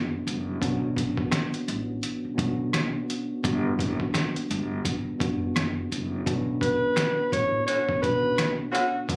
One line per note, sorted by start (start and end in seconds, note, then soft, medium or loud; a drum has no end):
0.00 0.21 F#1 medium
0.00 0.29 B2 medium
0.00 0.29 G3 medium
0.00 0.30 B3 medium
0.00 0.30 D4 medium
0.00 0.31 F#4 medium
0.27 0.56 F#1 medium
0.27 closed hi-hat medium
0.60 1.09 B1 loud
0.60 1.61 B2 medium
0.60 1.61 B3 medium
0.60 1.61 C#4 medium
0.60 1.62 D4 medium
0.60 1.62 F#4 medium
0.60 kick loud
0.60 closed hi-hat medium
0.97 kick loud
0.97 closed hi-hat medium
1.17 kick medium
1.32 cross-stick medium
1.32 snare loud
1.32 closed hi-hat medium
1.54 closed hi-hat medium
1.68 1.98 A1 loud
1.68 closed hi-hat medium
2.03 closed hi-hat medium
2.24 muted upright bass stroke soft
2.35 2.68 B1 loud
2.35 3.11 B2 medium
2.35 3.11 B3 medium
2.35 3.12 C#4 medium
2.35 3.12 D4 medium
2.35 3.13 F#4 medium
2.35 kick loud
2.39 closed hi-hat medium
2.73 cross-stick medium
2.73 snare loud
2.73 closed hi-hat medium
3.10 closed hi-hat medium
3.43 3.74 G1 loud
3.43 4.43 G2 loud
3.43 4.44 G3 medium
3.43 4.44 B3 medium
3.43 4.45 D4 medium
3.43 4.45 F#4 loud
3.43 kick loud
3.43 closed hi-hat medium
3.79 3.97 F#1 loud
3.79 kick loud
3.79 closed hi-hat medium
4.00 kick medium
4.14 cross-stick medium
4.14 snare loud
4.14 closed hi-hat medium
4.36 closed hi-hat medium
4.50 4.80 G1 medium
4.50 closed hi-hat medium
4.85 kick medium
4.85 closed hi-hat medium
5.18 5.50 F#1 medium
5.18 5.94 B2 medium
5.18 5.94 G3 medium
5.18 5.95 B3 medium
5.18 5.95 D4 medium
5.18 5.95 F#4 medium
5.18 kick loud
5.18 closed hi-hat medium
5.56 5.86 F#1 medium
5.56 cross-stick medium
5.56 snare loud
5.56 closed hi-hat medium
5.92 6.21 F#1 medium
5.92 closed hi-hat medium
6.24 6.74 B1 loud
6.24 7.25 B2 medium
6.24 7.26 B3 medium
6.24 7.26 C#4 medium
6.24 7.27 D4 medium
6.24 7.27 F#4 medium
6.24 kick loud
6.24 closed hi-hat loud
6.61 7.28 B4 medium
6.61 kick loud
6.61 closed hi-hat medium
6.96 finger snap medium
6.96 cross-stick medium
6.96 snare loud
6.96 closed hi-hat medium
7.32 7.62 A1 loud
7.32 7.64 C#5 medium
7.32 kick medium
7.32 closed hi-hat medium
7.67 7.84 D3 medium
7.67 7.84 C#4 medium
7.67 7.84 F#4 medium
7.67 7.99 C#5 medium
7.67 closed hi-hat medium
7.89 muted upright bass stroke medium
7.89 kick medium
7.99 8.33 B1 loud
7.99 8.76 B2 medium
7.99 8.76 B3 medium
7.99 8.76 C#4 medium
7.99 8.77 D4 medium
7.99 8.77 F#4 medium
7.99 8.55 B4 medium
7.99 kick loud
8.04 closed hi-hat medium
8.38 finger snap medium
8.38 cross-stick loud
8.38 snare loud
8.38 closed hi-hat medium
8.72 8.95 D3 medium
8.72 8.95 C#4 medium
8.72 8.95 F#4 loud
8.72 closed hi-hat medium
9.08 9.16 G1 loud
9.08 9.16 G2 loud
9.08 9.16 G3 medium
9.08 9.16 B3 medium
9.08 9.16 D4 medium
9.08 9.16 F#4 loud
9.08 kick loud
9.08 closed hi-hat medium